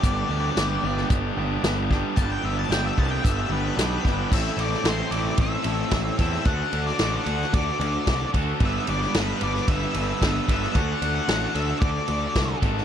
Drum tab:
CC |----------------|----------------|x---------------|----------------|
RD |----------------|----------------|--x-x-x-x-x-x-x-|x-x-x-x-x-x-x-x-|
HH |x---x---x---x---|x---x---x---x---|----------------|----------------|
SD |----o--o----o-o-|----o-------o-o-|---oo-------o--o|---oo--o----o---|
BD |o-------o-----o-|o-----o-o-----o-|o-------o---o-o-|o-------o---o-o-|

CC |----------------|----------------|
RD |x-x-x-x-x-x-x-x-|x-x-x-x-x-x-x-x-|
HH |----------------|----------------|
SD |---oo--o----o--o|----o-------o--o|
BD |o-------o---o-o-|o-------o---o-o-|